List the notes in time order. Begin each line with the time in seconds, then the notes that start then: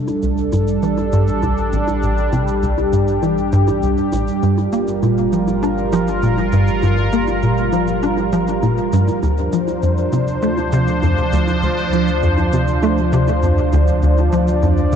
Already playing: A1 G3 D4 A4
0.08 low bongo, cabasa
0.22 C2, cabasa
0.38 cabasa
0.52 G2, low bongo, cabasa
0.67 cabasa
0.83 E3, cabasa
0.98 low bongo, cabasa
1.12 G2, cabasa
1.28 cabasa
1.43 C2, low bongo, cabasa
1.58 cabasa
1.72 A1, cabasa
1.87 low bongo, cabasa
2.02 A1 G4, cabasa
2.18 cabasa
2.32 C3, low bongo, cabasa
2.48 cabasa
2.62 C2, cabasa
2.78 low bongo, cabasa
2.92 G2, cabasa
3.08 cabasa
3.23 E3, low bongo, cabasa
3.38 cabasa
3.52 G2, cabasa
3.68 low bongo, cabasa
3.83 C2, cabasa
3.98 cabasa
4.12 A1, low bongo, cabasa
4.28 cabasa
4.43 G1 G2 F4 A#4, cabasa
4.58 low bongo, cabasa
4.73 A#3, cabasa
4.88 cabasa
5.03 A#2, low bongo, cabasa
5.18 cabasa
5.33 F3, cabasa
5.48 low bongo, cabasa
5.63 D4, cabasa
5.78 cabasa
5.93 F3, low bongo, cabasa
6.07 cabasa
6.23 A#2, cabasa
6.38 low bongo, cabasa
6.52 G2, cabasa
6.67 cabasa
6.82 G2, low bongo, cabasa
6.98 cabasa
7.12 A#3, cabasa
7.28 low bongo, cabasa
7.42 A#2, cabasa
7.57 cabasa
7.72 F3, low bongo, cabasa
7.87 cabasa
8.03 D4, cabasa
8.17 low bongo, cabasa
8.32 F3, cabasa
8.47 cabasa
8.63 A#2, low bongo, cabasa
8.78 cabasa
8.93 G2, cabasa
9.08 low bongo, cabasa
9.22 D2 F3 D4 C5, low bongo, cabasa
9.38 cabasa
9.53 F3, cabasa
9.68 low bongo, cabasa
9.83 F2, cabasa
9.98 cabasa
10.12 C3, low bongo, cabasa
10.28 cabasa
10.42 A3, cabasa
10.57 low bongo, cabasa
10.72 C3, cabasa
10.87 cabasa
11.03 F2, low bongo, cabasa
11.18 cabasa
11.32 D2, cabasa
11.48 low bongo, cabasa
11.63 D2, cabasa
11.78 cabasa
11.93 F3, low bongo, cabasa
12.08 cabasa
12.23 F2, cabasa
12.38 low bongo, cabasa
12.52 C3, cabasa
12.67 cabasa
12.82 A3, low bongo, cabasa
12.97 cabasa
13.13 C3, cabasa
13.28 low bongo, cabasa
13.43 F2, cabasa
13.58 cabasa
13.73 D2, low bongo, cabasa
13.88 cabasa
14.02 D2 D5, cabasa
14.18 low bongo, cabasa
14.32 F3, cabasa
14.48 cabasa
14.62 F2, low bongo, cabasa
14.77 cabasa
14.92 cabasa